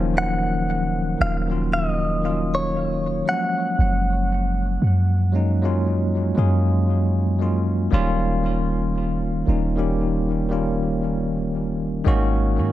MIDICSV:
0, 0, Header, 1, 4, 480
1, 0, Start_track
1, 0, Key_signature, -6, "minor"
1, 0, Tempo, 1034483
1, 1756, Time_signature, 4, 2, 24, 8
1, 5903, End_track
2, 0, Start_track
2, 0, Title_t, "Clean electric guitar"
2, 0, Program_c, 0, 27
2, 84, Note_on_c, 0, 78, 100
2, 562, Note_off_c, 0, 78, 0
2, 564, Note_on_c, 0, 77, 100
2, 628, Note_off_c, 0, 77, 0
2, 805, Note_on_c, 0, 76, 93
2, 884, Note_off_c, 0, 76, 0
2, 884, Note_on_c, 0, 75, 93
2, 1182, Note_on_c, 0, 73, 89
2, 1191, Note_off_c, 0, 75, 0
2, 1525, Note_on_c, 0, 78, 86
2, 1529, Note_off_c, 0, 73, 0
2, 2222, Note_off_c, 0, 78, 0
2, 5903, End_track
3, 0, Start_track
3, 0, Title_t, "Tine electric piano"
3, 0, Program_c, 1, 4
3, 0, Control_c, 1, 64, 127
3, 0, Note_on_c, 1, 51, 106
3, 0, Note_on_c, 1, 53, 124
3, 0, Note_on_c, 1, 54, 101
3, 0, Note_on_c, 1, 58, 103
3, 0, Note_on_c, 1, 61, 96
3, 442, Note_off_c, 1, 51, 0
3, 444, Note_off_c, 1, 54, 0
3, 447, Note_off_c, 1, 58, 0
3, 449, Note_off_c, 1, 61, 0
3, 451, Note_off_c, 1, 53, 0
3, 547, Note_on_c, 1, 51, 68
3, 551, Note_on_c, 1, 54, 57
3, 556, Note_on_c, 1, 58, 59
3, 560, Note_on_c, 1, 61, 59
3, 564, Note_on_c, 1, 65, 72
3, 666, Note_off_c, 1, 51, 0
3, 668, Note_off_c, 1, 54, 0
3, 671, Note_off_c, 1, 58, 0
3, 673, Note_off_c, 1, 61, 0
3, 675, Note_off_c, 1, 65, 0
3, 686, Note_on_c, 1, 51, 73
3, 691, Note_on_c, 1, 54, 69
3, 695, Note_on_c, 1, 58, 67
3, 699, Note_on_c, 1, 61, 66
3, 703, Note_on_c, 1, 65, 81
3, 978, Note_off_c, 1, 51, 0
3, 981, Note_off_c, 1, 54, 0
3, 983, Note_off_c, 1, 58, 0
3, 985, Note_off_c, 1, 61, 0
3, 987, Note_off_c, 1, 65, 0
3, 1029, Note_on_c, 1, 51, 74
3, 1032, Note_on_c, 1, 53, 56
3, 1038, Note_on_c, 1, 58, 68
3, 1041, Note_on_c, 1, 61, 67
3, 1046, Note_on_c, 1, 65, 81
3, 1063, Note_on_c, 1, 54, 68
3, 1069, Note_off_c, 1, 53, 0
3, 1504, Note_off_c, 1, 54, 0
3, 1510, Note_on_c, 1, 54, 75
3, 1512, Note_off_c, 1, 51, 0
3, 1513, Note_off_c, 1, 58, 0
3, 1515, Note_on_c, 1, 56, 68
3, 1518, Note_off_c, 1, 61, 0
3, 1518, Note_on_c, 1, 58, 68
3, 1521, Note_off_c, 1, 65, 0
3, 1521, Control_c, 1, 64, 0
3, 1523, Note_on_c, 1, 61, 70
3, 1528, Note_on_c, 1, 53, 79
3, 1610, Control_c, 1, 64, 127
3, 2316, Note_off_c, 1, 54, 0
3, 2319, Note_off_c, 1, 56, 0
3, 2320, Note_off_c, 1, 58, 0
3, 2323, Note_off_c, 1, 61, 0
3, 2325, Note_off_c, 1, 53, 0
3, 2468, Note_on_c, 1, 54, 77
3, 2472, Note_on_c, 1, 56, 72
3, 2477, Note_on_c, 1, 58, 69
3, 2481, Note_on_c, 1, 61, 74
3, 2486, Note_on_c, 1, 63, 85
3, 2587, Note_off_c, 1, 54, 0
3, 2589, Note_off_c, 1, 56, 0
3, 2591, Note_off_c, 1, 58, 0
3, 2593, Note_off_c, 1, 61, 0
3, 2596, Note_off_c, 1, 63, 0
3, 2607, Note_on_c, 1, 54, 85
3, 2612, Note_on_c, 1, 56, 76
3, 2616, Note_on_c, 1, 58, 81
3, 2621, Note_on_c, 1, 61, 81
3, 2624, Note_on_c, 1, 65, 97
3, 2899, Note_off_c, 1, 54, 0
3, 2901, Note_off_c, 1, 56, 0
3, 2903, Note_off_c, 1, 58, 0
3, 2906, Note_off_c, 1, 61, 0
3, 2907, Note_off_c, 1, 65, 0
3, 2946, Note_on_c, 1, 54, 89
3, 2951, Note_on_c, 1, 56, 84
3, 2955, Note_on_c, 1, 58, 77
3, 2959, Note_on_c, 1, 61, 81
3, 2963, Note_on_c, 1, 68, 99
3, 3360, Note_off_c, 1, 54, 0
3, 3363, Note_off_c, 1, 56, 0
3, 3365, Note_off_c, 1, 58, 0
3, 3367, Note_off_c, 1, 61, 0
3, 3369, Note_off_c, 1, 68, 0
3, 3428, Note_on_c, 1, 54, 76
3, 3431, Note_on_c, 1, 56, 71
3, 3436, Note_on_c, 1, 58, 73
3, 3440, Note_on_c, 1, 61, 71
3, 3445, Note_on_c, 1, 65, 89
3, 3637, Note_off_c, 1, 54, 0
3, 3638, Note_off_c, 1, 56, 0
3, 3641, Note_off_c, 1, 58, 0
3, 3643, Note_off_c, 1, 61, 0
3, 3645, Note_off_c, 1, 65, 0
3, 3668, Note_on_c, 1, 51, 111
3, 3672, Note_on_c, 1, 55, 102
3, 3677, Note_on_c, 1, 58, 103
3, 3681, Control_c, 1, 64, 0
3, 3681, Note_on_c, 1, 61, 101
3, 3685, Note_on_c, 1, 65, 126
3, 3767, Control_c, 1, 64, 127
3, 4284, Note_off_c, 1, 51, 0
3, 4286, Note_off_c, 1, 55, 0
3, 4288, Note_off_c, 1, 58, 0
3, 4290, Note_off_c, 1, 61, 0
3, 4293, Note_off_c, 1, 65, 0
3, 4387, Note_on_c, 1, 51, 77
3, 4392, Note_on_c, 1, 55, 67
3, 4396, Note_on_c, 1, 58, 69
3, 4400, Note_on_c, 1, 61, 68
3, 4405, Note_on_c, 1, 63, 83
3, 4506, Note_off_c, 1, 51, 0
3, 4509, Note_off_c, 1, 55, 0
3, 4511, Note_off_c, 1, 58, 0
3, 4513, Note_off_c, 1, 61, 0
3, 4515, Note_off_c, 1, 63, 0
3, 4527, Note_on_c, 1, 51, 84
3, 4532, Note_on_c, 1, 55, 78
3, 4536, Note_on_c, 1, 58, 79
3, 4540, Note_on_c, 1, 61, 76
3, 4544, Note_on_c, 1, 67, 97
3, 4819, Note_off_c, 1, 51, 0
3, 4821, Note_off_c, 1, 55, 0
3, 4823, Note_off_c, 1, 58, 0
3, 4825, Note_off_c, 1, 61, 0
3, 4828, Note_off_c, 1, 67, 0
3, 4868, Note_on_c, 1, 51, 88
3, 4871, Note_on_c, 1, 55, 80
3, 4876, Note_on_c, 1, 58, 81
3, 4881, Note_on_c, 1, 61, 83
3, 4885, Note_on_c, 1, 65, 98
3, 5484, Note_off_c, 1, 51, 0
3, 5486, Note_off_c, 1, 55, 0
3, 5488, Note_off_c, 1, 58, 0
3, 5491, Note_off_c, 1, 61, 0
3, 5493, Note_off_c, 1, 65, 0
3, 5586, Note_on_c, 1, 51, 108
3, 5590, Note_on_c, 1, 56, 98
3, 5595, Note_on_c, 1, 58, 103
3, 5599, Note_on_c, 1, 61, 102
3, 5601, Control_c, 1, 64, 0
3, 5604, Note_on_c, 1, 66, 127
3, 5672, Control_c, 1, 64, 127
3, 5903, Note_off_c, 1, 51, 0
3, 5903, Note_off_c, 1, 56, 0
3, 5903, Note_off_c, 1, 58, 0
3, 5903, Note_off_c, 1, 61, 0
3, 5903, Note_off_c, 1, 66, 0
3, 5903, End_track
4, 0, Start_track
4, 0, Title_t, "808-style bass"
4, 0, Program_c, 2, 38
4, 0, Note_on_c, 2, 27, 112
4, 538, Note_off_c, 2, 27, 0
4, 558, Note_on_c, 2, 27, 103
4, 1499, Note_off_c, 2, 27, 0
4, 1757, Note_on_c, 2, 30, 112
4, 2218, Note_off_c, 2, 30, 0
4, 2236, Note_on_c, 2, 42, 100
4, 2938, Note_off_c, 2, 42, 0
4, 2958, Note_on_c, 2, 42, 104
4, 3658, Note_off_c, 2, 42, 0
4, 3677, Note_on_c, 2, 27, 111
4, 4378, Note_off_c, 2, 27, 0
4, 4397, Note_on_c, 2, 27, 96
4, 5578, Note_off_c, 2, 27, 0
4, 5597, Note_on_c, 2, 32, 107
4, 5837, Note_on_c, 2, 44, 90
4, 5844, Note_off_c, 2, 32, 0
4, 5903, Note_off_c, 2, 44, 0
4, 5903, End_track
0, 0, End_of_file